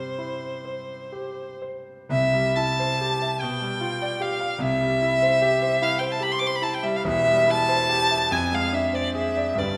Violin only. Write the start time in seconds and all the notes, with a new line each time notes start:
Already playing: C5
2.11 E5
2.56 A5
3.40 G5
4.22 F5
4.63 E5
5.83 F5
5.99 G5
6.11 A5
6.23 B5
6.32 C6
6.39 D6
6.47 C6
6.56 B5
6.63 A5
6.74 G5
6.83 E5
6.96 F5
7.07 E5
7.50 A5
8.32 G#5
8.54 F5
8.74 E5
8.95 D5
9.15 E5
9.58 D5